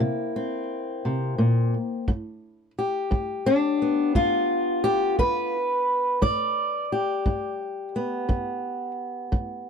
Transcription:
Already playing: steel-string acoustic guitar A#3 C4 E4
0.00 steel-string acoustic guitar C3
0.36 steel-string acoustic guitar C4
1.05 steel-string acoustic guitar C3
1.38 steel-string acoustic guitar A#2
2.08 steel-string acoustic guitar G2, kick
2.79 steel-string acoustic guitar G4
3.11 steel-string acoustic guitar G2, kick
3.46 steel-string acoustic guitar D4
3.82 steel-string acoustic guitar B3
4.15 steel-string acoustic guitar G2 F4, kick
4.84 steel-string acoustic guitar G4
5.19 steel-string acoustic guitar G2 B4, kick
6.22 steel-string acoustic guitar G2 D5, kick
6.92 steel-string acoustic guitar G4
7.26 steel-string acoustic guitar G2, kick
7.96 steel-string acoustic guitar B3
8.29 steel-string acoustic guitar G2, kick
9.32 steel-string acoustic guitar G2, kick

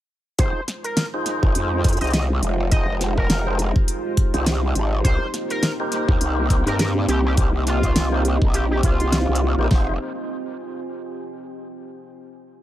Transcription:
0.39 wobble bass F1, analog synth pad G#3 D#4 F4 C5, tonewheel organ D#4 F4 G#4 C5, ambient pad F4, analog synth lead C5, kick, closed hi-hat
0.68 snare, closed hi-hat
0.84 analog synth lead A#4, ambient pad C5, closed hi-hat
0.97 snare, closed hi-hat
1.14 tonewheel organ D#4 F4 G#4 C5
1.26 snare, closed hi-hat
1.43 wobble bass G#1, kick
1.55 wobble bass F2, closed hi-hat
1.84 tonewheel organ D#4 F4 G#4 C5, kick, snare, closed hi-hat
1.88 closed hi-hat
1.93 closed hi-hat
1.97 analog synth lead D#5, closed hi-hat
2.01 wobble bass C2, tonewheel organ D#4 F4 G#4 C5, closed hi-hat
2.04 closed hi-hat
2.07 closed hi-hat
2.10 analog synth lead D#5, snare, closed hi-hat
2.13 closed hi-hat
2.42 wobble bass F1, closed hi-hat
2.71 tonewheel organ D#4 F4 G#4 C5, analog synth pad G4, analog synth lead D#5, kick, closed hi-hat
3.01 snare, closed hi-hat
3.18 analog synth lead A#4, kick
3.30 wobble bass F1, snare, closed hi-hat
3.47 tonewheel organ D#4 F4 G#4 C5
3.59 closed hi-hat
3.76 kick
3.88 closed hi-hat
4.17 kick, closed hi-hat
4.34 wobble bass C2, tonewheel organ D#4 F4 G#4 C5, closed hi-hat
4.46 snare, closed hi-hat
4.75 wobble bass G#1, closed hi-hat
5.04 wobble bass C2, analog synth pad A#3, ambient pad C4, tonewheel organ D#4 G4 A#4 C5, analog synth lead C5, kick, closed hi-hat
5.11 ambient pad G4
5.34 snare, closed hi-hat
5.50 analog synth lead A#4, closed hi-hat
5.63 snare, closed hi-hat
5.80 tonewheel organ D#4 G4 A#4 C5, ambient pad D#5
5.92 snare, closed hi-hat
6.08 wobble bass D#2, kick
6.21 wobble bass C2, closed hi-hat
6.50 tonewheel organ D#4 G4 A#4 C5, kick, snare, closed hi-hat
6.66 wobble bass G2, tonewheel organ D#4 G4 A#4 C5, analog synth lead A#4, closed hi-hat
6.79 analog synth lead A#4, snare, closed hi-hat
7.08 wobble bass C2, analog synth lead G4, closed hi-hat
7.26 analog synth lead G4
7.37 tonewheel organ D#4 G4 A#4 C5, kick, closed hi-hat
7.67 analog synth lead F4, snare, closed hi-hat
7.83 kick, closed hi-hat
7.96 wobble bass C2, snare, closed hi-hat
8.12 tonewheel organ D#4 G4 A#4 C5
8.25 closed hi-hat
8.42 wobble bass A#1, kick
8.54 analog synth lead G4, closed hi-hat
8.71 analog synth lead G4
8.83 wobble bass C2, analog synth lead F4, kick, closed hi-hat
9.00 closed hi-hat
9.12 snare, closed hi-hat
9.29 wobble bass C2
9.35 closed hi-hat
9.58 wobble bass A#1, tonewheel organ D#4 G4 A#4 C5
9.69 wobble bass F1, tonewheel organ D#4 F4 G#4 C5, ambient pad F4, kick, snare
9.80 ambient pad C5
9.89 ambient pad G5
9.96 ambient pad G#5

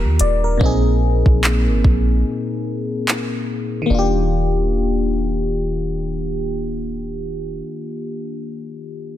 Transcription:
Already playing: fm electric piano D#3 A#3 D4 F4 G4 A#4
0.03 808-style bass D#2
0.19 808-style bass D#1, fm electric piano D5, closed hi-hat
0.44 fm electric piano A#4
0.57 808-style bass A#1, fm electric piano A#2 A#3, kick
0.62 fm electric piano C4 D#4 G#4
1.26 808-style bass A#1, kick
1.44 clap
1.67 808-style bass G#1
1.84 808-style bass A#1, kick
3.08 clap
3.82 fm electric piano D#3
3.86 fm electric piano A#3
3.90 808-style bass D#1, fm electric piano D4
3.95 fm electric piano F4
3.99 fm electric piano G4

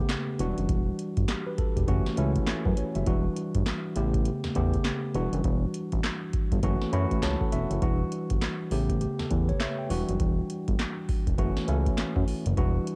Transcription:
Already playing: tine electric piano C#3 A3 B3 G4
0.09 snare, clap, closed hi-hat
0.39 analog synth bass E1, tine electric piano E3 F#3 D4 F#4, closed hi-hat
0.46 tine electric piano G3
0.58 analog synth bass F#1, closed hi-hat
0.69 analog synth bass E1, kick, closed hi-hat
0.99 closed hi-hat
1.17 analog synth bass G1, kick, closed hi-hat
1.28 tine electric piano G4, snare, clap, closed hi-hat
1.47 tine electric piano B4
1.58 analog synth bass E1, tine electric piano A4, kick, closed hi-hat
1.76 analog synth bass E1, tine electric piano G4, kick, closed hi-hat
1.87 analog synth bass F#1, tine electric piano E3 A3 C#4 F#4, kick, closed hi-hat
2.06 analog synth bass C#2, snare
2.17 analog synth bass C#2, tine electric piano E3 A3 C#4 E4, closed hi-hat
2.36 kick, closed hi-hat
2.47 tine electric piano A4, snare, clap, closed hi-hat
2.65 analog synth bass F#2, tine electric piano B4, kick
2.77 tine electric piano C#5, closed hi-hat
2.95 analog synth bass F#1, tine electric piano E5, closed hi-hat
3.06 analog synth bass E1, tine electric piano E3 G3 D4 F#4, kick, closed hi-hat
3.36 closed hi-hat
3.54 analog synth bass G1, kick, closed hi-hat
3.66 snare, clap, closed hi-hat
3.95 analog synth bass A1, tine electric piano C#3 A3 B3 G4, closed hi-hat
4.14 kick, closed hi-hat
4.25 closed hi-hat
4.44 analog synth bass E2, snare
4.55 analog synth bass E2, tine electric piano C#3 A3 B3 G4, kick, closed hi-hat
4.73 kick, closed hi-hat
4.85 snare, clap, closed hi-hat
5.14 analog synth bass E1, tine electric piano E3 G3 D4 F#4, closed hi-hat
5.33 analog synth bass F#1, closed hi-hat
5.44 analog synth bass E1, kick, closed hi-hat
5.74 closed hi-hat
5.92 analog synth bass A1, kick, closed hi-hat
6.04 snare, clap, closed hi-hat
6.33 analog synth bass G1, kick, closed hi-hat
6.52 analog synth bass G1, kick, closed hi-hat
6.63 analog synth bass F#1, tine electric piano E3 A3 C#4 F#4, kick, closed hi-hat
6.82 snare
6.92 analog synth bass F#2, tine electric piano E3 A3 C#4 F#4 B5, closed hi-hat
7.11 analog synth bass A1, kick, closed hi-hat
7.23 analog synth bass C#2, tine electric piano C#5 A5, snare, clap, closed hi-hat
7.41 tine electric piano A4 F#5, kick
7.52 analog synth bass E1, tine electric piano F#4 E5, closed hi-hat
7.70 analog synth bass F#1, tine electric piano E4, closed hi-hat
7.81 analog synth bass E1, tine electric piano E3 G3 D4 F#4, kick, closed hi-hat
8.12 closed hi-hat
8.30 analog synth bass G1, kick, closed hi-hat
8.42 snare, clap, closed hi-hat
8.71 analog synth bass A1, tine electric piano C#3 A3 B3 G4, open hi-hat
8.90 kick, closed hi-hat
9.01 tine electric piano G4, closed hi-hat
9.19 analog synth bass E2, tine electric piano A4, snare
9.30 analog synth bass E2, tine electric piano B4, kick, closed hi-hat
9.49 tine electric piano C#5, kick, closed hi-hat
9.60 tine electric piano E5, snare, clap, closed hi-hat
9.78 tine electric piano G5
9.89 analog synth bass E1, tine electric piano E3 G3 D4 F#4, open hi-hat
10.08 analog synth bass F#1, closed hi-hat
10.20 analog synth bass E1, kick, closed hi-hat
10.50 closed hi-hat
10.68 analog synth bass G1, kick, closed hi-hat
10.79 snare, clap, closed hi-hat
11.09 analog synth bass E1, kick, open hi-hat
11.27 analog synth bass E1, kick, closed hi-hat
11.38 analog synth bass F#1, tine electric piano E3 A3 C#4 F#4, kick, closed hi-hat
11.57 analog synth bass C#2, snare
11.68 analog synth bass C#2, tine electric piano E3 A3 C#4 E4, closed hi-hat
11.86 kick, closed hi-hat
11.98 snare, clap, closed hi-hat
12.16 analog synth bass F#2, kick
12.28 open hi-hat
12.46 analog synth bass F#1, closed hi-hat
12.57 analog synth bass E1, tine electric piano E3 G3 D4 F#4, kick, closed hi-hat
12.87 closed hi-hat

